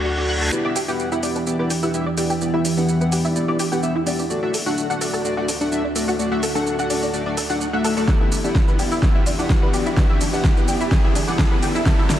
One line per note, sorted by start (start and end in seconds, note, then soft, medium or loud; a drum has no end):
0.00 0.50 D2 medium
0.00 0.48 D3 medium
0.00 0.50 A3 medium
0.00 0.48 D4 medium
0.00 0.50 D4 medium
0.00 0.43 F#4 loud
0.00 0.48 F#4 medium
0.00 0.50 F#4 medium
0.00 0.49 A4 medium
0.00 0.50 D5 medium
0.00 reverse cymbal medium
0.05 0.13 F#4 medium
0.18 0.24 D4 medium
0.29 0.33 F#5 loud
0.41 0.48 A4 medium
0.52 4.26 E2 medium
0.52 4.26 E3 medium
0.52 0.63 B3 medium
0.52 4.26 D4 medium
0.52 0.63 E4 medium
0.52 4.26 G4 medium
0.52 0.63 G4 medium
0.52 0.63 D5 medium
0.52 riser medium
0.52 shaker soft
0.65 0.74 B3 loud
0.65 0.74 E4 medium
0.65 0.74 G4 medium
0.65 0.71 D5 loud
0.65 0.74 E5 loud
0.76 0.87 G4 loud
0.76 open hi-hat loud
0.76 shaker medium
0.88 1.09 B3 medium
0.88 1.09 E4 medium
0.88 0.95 G4 loud
0.88 1.09 G4 medium
0.88 1.09 F#5 loud
0.88 shaker soft
0.99 shaker soft
1.12 1.21 B3 medium
1.12 1.21 E4 medium
1.12 1.19 E4 loud
1.12 1.21 G4 medium
1.12 1.21 F#5 loud
1.12 shaker soft
1.23 1.44 B3 medium
1.23 1.34 D4 medium
1.23 1.44 E4 medium
1.23 1.44 G4 medium
1.23 1.44 D5 medium
1.23 open hi-hat medium
1.23 shaker medium
1.36 1.42 D4 medium
1.36 shaker soft
1.47 1.56 B3 medium
1.47 1.56 E4 medium
1.47 1.56 G4 medium
1.47 1.56 D5 medium
1.47 shaker soft
1.59 1.69 B3 medium
1.59 1.69 E4 medium
1.59 1.69 G4 medium
1.59 1.69 B4 medium
1.59 1.69 D5 loud
1.70 1.78 G4 medium
1.70 open hi-hat loud
1.70 shaker medium
1.83 1.91 B3 medium
1.83 1.91 E4 medium
1.83 1.90 E4 loud
1.83 1.91 G4 medium
1.83 1.91 F#5 medium
1.83 shaker soft
1.94 2.04 B3 medium
1.94 2.04 E4 medium
1.94 2.04 G4 medium
1.94 2.04 E5 loud
1.94 shaker soft
2.06 2.13 D5 loud
2.17 2.34 B3 medium
2.17 2.34 E4 medium
2.17 2.34 G4 medium
2.17 2.29 G4 loud
2.17 2.34 D5 medium
2.17 open hi-hat medium
2.17 shaker medium
2.30 2.37 G4 loud
2.30 shaker soft
2.41 2.52 B3 medium
2.41 2.52 E4 medium
2.41 2.52 G4 medium
2.41 2.52 D5 medium
2.41 shaker soft
2.54 2.63 B3 medium
2.54 2.63 E4 medium
2.54 2.60 E4 loud
2.54 2.63 G4 medium
2.54 2.63 E5 loud
2.65 2.76 D4 medium
2.65 open hi-hat loud
2.65 shaker medium
2.77 2.98 B3 medium
2.77 2.84 D4 medium
2.77 2.98 E4 medium
2.77 2.98 G4 medium
2.77 2.98 F#5 loud
2.77 shaker soft
2.89 shaker soft
3.01 3.10 B3 medium
3.01 3.10 E4 medium
3.01 3.10 G4 medium
3.01 3.11 B4 medium
3.01 3.10 F#5 loud
3.01 shaker soft
3.12 3.33 B3 medium
3.12 3.33 E4 medium
3.12 3.33 G4 medium
3.12 3.20 G4 medium
3.12 3.33 D5 medium
3.12 open hi-hat medium
3.12 shaker medium
3.25 3.31 E4 loud
3.25 shaker soft
3.36 3.45 B3 medium
3.36 3.45 E4 medium
3.36 3.45 G4 medium
3.36 3.45 D5 loud
3.36 shaker soft
3.48 3.57 B3 medium
3.48 3.58 E4 medium
3.48 3.58 G4 medium
3.48 3.58 D5 loud
3.48 3.55 D5 loud
3.59 3.71 G4 loud
3.59 open hi-hat loud
3.59 shaker medium
3.72 3.80 B3 medium
3.72 3.80 E4 medium
3.72 3.78 G4 medium
3.72 3.80 G4 medium
3.72 3.80 F#5 medium
3.72 shaker soft
3.83 3.93 B3 loud
3.83 3.93 E4 medium
3.83 3.93 G4 medium
3.83 3.93 E5 loud
3.83 shaker soft
3.96 4.02 E4 loud
4.07 4.23 B3 medium
4.07 4.18 D4 medium
4.07 4.23 E4 medium
4.07 4.23 G4 medium
4.07 4.23 D5 medium
4.07 open hi-hat medium
4.07 shaker medium
4.19 4.26 D4 medium
4.19 shaker soft
4.30 8.04 D2 medium
4.30 8.04 D3 medium
4.30 4.41 A3 medium
4.30 4.41 D4 medium
4.30 4.41 F#4 medium
4.30 8.04 F#4 medium
4.30 8.04 A4 medium
4.30 4.41 D5 medium
4.30 shaker soft
4.43 4.52 A3 medium
4.43 4.52 D4 medium
4.43 4.52 F#4 medium
4.43 4.53 D5 medium
4.43 4.52 E5 loud
4.54 4.61 A4 medium
4.54 open hi-hat loud
4.54 shaker medium
4.66 4.87 A3 medium
4.66 4.87 D4 medium
4.66 4.73 F#4 loud
4.66 4.87 F#4 medium
4.66 4.87 F#5 loud
4.66 shaker soft
4.78 shaker soft
4.90 4.99 A3 medium
4.90 4.99 D4 medium
4.90 4.99 F#4 medium
4.90 4.97 F#5 loud
4.90 4.99 F#5 loud
4.90 shaker soft
5.01 5.22 A3 medium
5.01 5.22 D4 medium
5.01 5.22 F#4 medium
5.01 5.12 A4 loud
5.01 5.22 D5 medium
5.01 open hi-hat loud
5.01 shaker medium
5.14 5.20 A4 loud
5.14 shaker soft
5.25 5.34 A3 medium
5.25 5.34 D4 medium
5.25 5.34 F#4 medium
5.25 5.34 D5 loud
5.25 shaker soft
5.37 5.47 A3 medium
5.37 5.46 D4 medium
5.37 5.44 F#4 loud
5.37 5.46 F#4 medium
5.37 5.46 D5 loud
5.48 5.60 D4 medium
5.48 open hi-hat loud
5.48 shaker medium
5.61 5.69 A3 medium
5.61 5.69 D4 medium
5.61 5.68 D4 medium
5.61 5.69 F#4 medium
5.61 5.69 F#5 medium
5.61 shaker soft
5.72 5.82 A3 medium
5.72 5.82 D4 medium
5.72 5.82 F#4 medium
5.72 5.82 E5 loud
5.72 shaker soft
5.84 5.94 D5 medium
5.96 6.12 A3 medium
5.96 6.12 D4 medium
5.96 6.12 F#4 medium
5.96 6.03 A4 medium
5.96 6.12 D5 medium
5.96 open hi-hat medium
5.96 shaker medium
6.08 6.15 F#4 loud
6.08 shaker soft
6.19 6.30 A3 medium
6.19 6.30 D4 medium
6.19 6.30 F#4 medium
6.19 6.30 D5 medium
6.19 shaker soft
6.31 6.41 A3 loud
6.31 6.41 D4 medium
6.31 6.41 F#4 medium
6.31 6.41 E5 loud
6.31 6.38 F#5 loud
6.43 6.54 A4 medium
6.43 open hi-hat loud
6.43 shaker medium
6.55 6.76 A3 medium
6.55 6.76 D4 medium
6.55 6.76 F#4 medium
6.55 6.62 A4 loud
6.55 6.76 F#5 loud
6.55 shaker soft
6.67 shaker soft
6.79 6.88 A3 medium
6.79 6.88 D4 medium
6.79 6.88 F#4 medium
6.79 6.86 F#4 loud
6.79 6.88 F#5 loud
6.79 shaker soft
6.90 7.11 A3 medium
6.90 7.11 D4 medium
6.90 7.01 D4 medium
6.90 7.11 F#4 medium
6.90 7.11 D5 medium
6.90 open hi-hat loud
6.90 shaker medium
7.03 7.09 D4 medium
7.03 shaker soft
7.13 7.23 A3 medium
7.13 7.23 D4 medium
7.13 7.23 F#4 medium
7.13 7.23 D5 medium
7.13 shaker soft
7.26 7.35 A3 loud
7.26 7.35 D4 medium
7.26 7.35 F#4 medium
7.26 7.35 D5 loud
7.26 7.36 D5 medium
7.37 7.45 A4 medium
7.37 open hi-hat loud
7.37 shaker medium
7.50 7.65 A3 medium
7.50 7.65 D4 medium
7.50 7.56 F#4 loud
7.50 7.65 F#4 medium
7.50 7.65 F#5 medium
7.50 shaker soft
7.61 shaker soft
7.73 7.94 A3 loud
7.73 7.94 D4 medium
7.73 7.94 F#4 medium
7.73 7.94 E5 loud
7.73 7.80 F#5 medium
7.84 7.96 A4 loud
7.84 open hi-hat medium
7.84 shaker medium
7.97 8.06 A3 medium
7.97 8.06 D4 medium
7.97 8.06 F#4 medium
7.97 8.04 A4 loud
7.97 8.06 D5 loud
7.97 shaker soft
8.08 11.82 E2 medium
8.08 11.82 E3 medium
8.08 8.19 B3 medium
8.08 11.82 D4 medium
8.08 8.19 E4 medium
8.08 8.19 G4 medium
8.08 11.82 G4 medium
8.08 8.19 D5 medium
8.08 kick loud
8.08 snare soft
8.08 shaker soft
8.21 8.30 B3 medium
8.21 8.27 E4 medium
8.21 8.30 E4 medium
8.21 8.30 G4 medium
8.21 8.30 E5 loud
8.32 8.43 D4 medium
8.32 open hi-hat loud
8.32 shaker medium
8.44 8.65 B3 medium
8.44 8.51 D4 medium
8.44 8.65 E4 medium
8.44 8.65 G4 medium
8.44 8.65 F#5 medium
8.44 shaker soft
8.55 kick loud
8.55 snare soft
8.55 shaker soft
8.68 8.77 B3 medium
8.68 8.77 E4 medium
8.68 8.77 G4 medium
8.68 8.78 B4 medium
8.68 8.77 F#5 medium
8.68 shaker soft
8.79 9.00 B3 medium
8.79 9.00 E4 medium
8.79 8.87 G4 medium
8.79 9.00 G4 medium
8.79 9.00 D5 medium
8.79 open hi-hat medium
8.79 shaker medium
8.92 8.98 E4 medium
8.92 shaker soft
9.03 9.13 B3 medium
9.03 9.13 E4 medium
9.03 9.13 G4 medium
9.03 9.13 D5 medium
9.03 kick loud
9.03 snare medium
9.03 shaker soft
9.15 9.24 B3 medium
9.15 9.24 E4 medium
9.15 9.22 E4 loud
9.15 9.24 G4 medium
9.15 9.24 E5 medium
9.26 9.38 D4 medium
9.26 open hi-hat loud
9.26 shaker medium
9.39 9.59 B3 medium
9.39 9.45 D4 medium
9.39 9.59 E4 medium
9.39 9.59 G4 medium
9.39 9.59 F#5 medium
9.39 shaker soft
9.50 kick loud
9.50 snare medium
9.50 shaker soft
9.62 9.72 B3 medium
9.62 9.72 E4 medium
9.62 9.72 G4 medium
9.62 9.72 B4 medium
9.62 9.72 F#5 medium
9.73 9.94 B3 medium
9.73 9.94 E4 medium
9.73 9.94 G4 medium
9.73 9.81 G4 medium
9.73 9.94 D5 medium
9.73 open hi-hat medium
9.73 shaker medium
9.86 9.93 E4 medium
9.86 shaker soft
9.97 10.08 B3 medium
9.97 10.08 E4 medium
9.97 10.08 G4 medium
9.97 10.08 D5 medium
9.97 kick loud
9.97 snare medium
9.97 shaker soft
10.10 10.19 B3 medium
10.10 10.19 E4 medium
10.10 10.16 E4 medium
10.10 10.19 G4 medium
10.10 10.19 E5 loud
10.21 10.32 D4 medium
10.21 open hi-hat loud
10.21 shaker medium
10.33 10.54 B3 medium
10.33 10.40 D4 medium
10.33 10.54 E4 medium
10.33 10.54 G4 medium
10.33 10.54 F#5 loud
10.33 shaker soft
10.44 kick loud
10.44 snare medium
10.44 shaker soft
10.57 10.66 B3 medium
10.57 10.66 E4 medium
10.57 10.66 G4 medium
10.57 10.67 B4 medium
10.57 10.66 F#5 loud
10.57 shaker soft
10.68 10.89 B3 medium
10.68 10.89 E4 medium
10.68 10.89 G4 medium
10.68 10.76 G4 medium
10.68 10.89 D5 medium
10.68 open hi-hat medium
10.68 shaker medium
10.81 10.87 E4 loud
10.81 shaker soft
10.91 11.02 B3 medium
10.91 11.02 E4 medium
10.91 11.02 G4 medium
10.91 11.02 D5 medium
10.91 kick loud
10.91 snare medium
10.91 shaker soft
11.04 11.13 B3 medium
11.04 11.13 E4 medium
11.04 11.11 E4 loud
11.04 11.13 G4 medium
11.04 11.13 E5 loud
11.15 11.27 D4 medium
11.15 open hi-hat loud
11.15 shaker medium
11.28 11.48 B3 medium
11.28 11.34 D4 medium
11.28 11.48 E4 medium
11.28 11.48 G4 medium
11.28 11.48 F#5 loud
11.28 shaker soft
11.39 kick loud
11.39 snare medium
11.39 shaker soft
11.51 11.61 B3 medium
11.51 11.61 E4 medium
11.51 11.61 G4 medium
11.51 11.61 B4 medium
11.51 11.61 F#5 medium
11.62 11.83 B3 medium
11.62 11.83 E4 medium
11.62 11.83 G4 medium
11.62 11.70 G4 medium
11.62 11.83 D5 medium
11.62 open hi-hat medium
11.62 shaker medium
11.75 11.82 E4 loud
11.75 shaker soft
11.86 12.19 D2 medium
11.86 12.19 D3 medium
11.86 11.97 B3 medium
11.86 11.97 E4 medium
11.86 11.96 F#4 medium
11.86 12.19 F#4 medium
11.86 12.19 A4 medium
11.86 11.97 D5 medium
11.86 kick loud
11.86 snare medium
11.86 shaker soft
11.98 12.08 B3 medium
11.98 12.08 E4 medium
11.98 12.05 E4 loud
11.98 12.08 F#4 medium
11.98 12.08 E5 loud
12.10 12.19 D4 medium
12.10 snare medium
12.10 open hi-hat loud
12.10 shaker medium